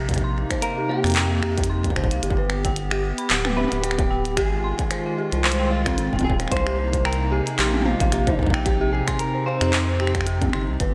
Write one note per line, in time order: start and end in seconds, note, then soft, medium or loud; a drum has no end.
0.00 0.45 A#1 medium
0.00 2.19 C3 medium
0.00 2.19 A#3 medium
0.00 2.19 D#4 medium
0.09 kick loud
0.09 closed hi-hat medium
0.11 kick medium
0.14 kick medium
0.14 closed hi-hat medium
0.16 kick medium
0.16 kick soft
0.16 closed hi-hat soft
0.21 0.33 C6 loud
0.21 kick soft
0.50 0.56 C5 medium
0.50 finger snap medium
0.50 kick medium
0.50 closed hi-hat medium
0.62 0.90 A#4 loud
0.62 0.77 F5 medium
0.62 closed hi-hat medium
0.78 0.89 G4 medium
0.89 1.92 G4 loud
0.89 1.01 C5 medium
1.04 1.92 F2 medium
1.04 finger snap medium
1.04 closed hi-hat soft
1.06 closed hi-hat soft
1.10 closed hi-hat soft
1.12 closed hi-hat soft
1.14 clap loud
1.14 closed hi-hat soft
1.16 1.23 G5 loud
1.16 closed hi-hat medium
1.43 1.54 G4 loud
1.43 finger snap medium
1.58 kick loud
1.58 closed hi-hat medium
1.64 closed hi-hat medium
1.70 1.81 C6 loud
1.84 kick medium
1.84 closed hi-hat soft
1.90 kick medium
1.96 2.13 G1 loud
1.96 2.03 C5 medium
1.96 finger snap medium
1.96 kick medium
2.04 kick loud
2.11 2.20 C2 medium
2.11 2.23 F5 medium
2.11 closed hi-hat medium
2.23 3.13 G1 loud
2.23 4.35 B3 medium
2.23 4.35 G4 medium
2.23 2.37 G4 medium
2.23 closed hi-hat medium
2.30 kick loud
2.38 2.47 B4 medium
2.50 finger snap medium
2.65 2.70 G5 loud
2.65 kick medium
2.65 closed hi-hat medium
2.76 closed hi-hat medium
2.91 3.01 G4 loud
2.91 finger snap medium
3.18 3.27 B5 loud
3.18 closed hi-hat soft
3.30 3.66 D1 medium
3.30 clap loud
3.30 closed hi-hat medium
3.45 3.51 B4 medium
3.45 finger snap medium
3.45 high tom medium
3.57 3.84 B4 medium
3.57 3.71 E5 medium
3.57 high tom soft
3.60 high tom soft
3.64 high tom medium
3.68 4.39 D1 medium
3.68 3.83 G4 medium
3.68 closed hi-hat medium
3.68 high tom medium
3.83 4.36 G4 medium
3.83 3.95 B4 medium
3.83 closed hi-hat medium
3.91 finger snap medium
3.99 kick loud
3.99 closed hi-hat soft
4.10 4.17 G5 loud
4.25 closed hi-hat medium
4.37 4.74 G#1 medium
4.37 6.49 D#3 medium
4.37 6.49 G#3 medium
4.37 6.49 F4 loud
4.37 4.49 G4 loud
4.37 5.40 G#4 loud
4.37 finger snap medium
4.37 kick loud
4.37 closed hi-hat medium
4.64 4.76 C6 loud
4.79 kick medium
4.79 closed hi-hat medium
4.91 4.98 C5 medium
4.91 finger snap soft
4.91 closed hi-hat medium
5.06 5.17 F5 medium
5.18 5.32 G4 medium
5.32 5.99 C2 medium
5.32 5.42 C5 medium
5.32 closed hi-hat soft
5.44 5.69 C5 loud
5.44 finger snap soft
5.44 clap loud
5.52 closed hi-hat medium
5.59 5.65 G5 loud
5.71 6.24 F4 loud
5.86 5.95 C4 medium
5.86 finger snap medium
5.86 kick loud
5.86 closed hi-hat medium
5.98 6.09 G#1 loud
5.98 6.09 C4 medium
5.98 closed hi-hat medium
6.13 6.47 D#1 medium
6.13 6.22 G5 medium
6.13 kick medium
6.13 high tom soft
6.15 closed hi-hat soft
6.15 high tom soft
6.15 high tom medium
6.19 kick medium
6.19 high tom medium
6.21 high tom medium
6.23 6.32 G#4 medium
6.23 6.32 G5 loud
6.23 high tom medium
6.30 kick medium
6.40 6.45 C5 medium
6.40 finger snap soft
6.40 closed hi-hat medium
6.48 7.41 C2 loud
6.48 10.76 C3 medium
6.48 8.64 A#3 medium
6.48 10.76 D#4 loud
6.48 7.05 C5 loud
6.48 6.66 F5 medium
6.48 finger snap soft
6.48 kick loud
6.48 closed hi-hat medium
6.57 finger snap soft
6.67 6.78 G4 medium
6.67 finger snap soft
6.78 6.90 C5 medium
6.93 kick medium
6.93 closed hi-hat soft
7.05 7.33 A#4 medium
7.05 7.12 G5 loud
7.05 finger snap medium
7.13 closed hi-hat medium
7.32 7.43 G4 loud
7.32 7.58 G#4 medium
7.47 closed hi-hat soft
7.59 7.95 A#1 medium
7.59 7.84 G4 medium
7.59 7.70 C6 loud
7.59 finger snap medium
7.59 clap loud
7.59 closed hi-hat medium
7.74 high tom medium
7.82 high tom medium
7.85 8.35 F4 medium
7.85 7.92 C5 medium
7.85 high tom medium
7.90 high tom medium
8.00 9.02 A#1 medium
8.00 8.12 F5 medium
8.00 kick loud
8.00 closed hi-hat medium
8.12 8.27 G4 medium
8.12 finger snap soft
8.12 closed hi-hat medium
8.27 8.36 C5 medium
8.27 kick loud
8.27 closed hi-hat soft
8.39 kick medium
8.43 kick medium
8.46 kick medium
8.50 8.60 G5 loud
8.50 finger snap medium
8.50 kick loud
8.66 10.78 C4 medium
8.66 8.92 G4 medium
8.66 kick loud
8.66 closed hi-hat medium
8.81 8.90 G4 loud
8.93 9.20 G#4 loud
9.08 9.17 C6 loud
9.08 finger snap medium
9.08 kick medium
9.08 closed hi-hat medium
9.19 9.46 A#4 loud
9.19 closed hi-hat medium
9.35 9.40 C5 medium
9.46 10.01 C5 loud
9.46 9.61 F5 medium
9.61 10.49 F2 medium
9.61 9.72 G4 medium
9.61 finger snap medium
9.61 closed hi-hat soft
9.73 9.85 C5 medium
9.73 clap loud
9.73 closed hi-hat medium
10.00 10.50 G4 medium
10.00 10.07 G5 loud
10.00 finger snap soft
10.07 finger snap soft
10.15 finger snap medium
10.15 kick loud
10.15 closed hi-hat medium
10.21 finger snap medium
10.27 10.38 G4 loud
10.27 closed hi-hat medium
10.42 kick loud
10.42 closed hi-hat soft
10.42 high tom medium
10.44 high tom medium
10.49 10.70 G1 loud
10.49 10.65 C6 loud
10.49 finger snap medium
10.49 high tom medium
10.68 10.77 C2 medium
10.80 10.94 G1 loud
10.80 10.94 B3 medium
10.80 10.94 G4 medium
10.80 10.87 B4 medium
10.80 kick loud
10.80 closed hi-hat medium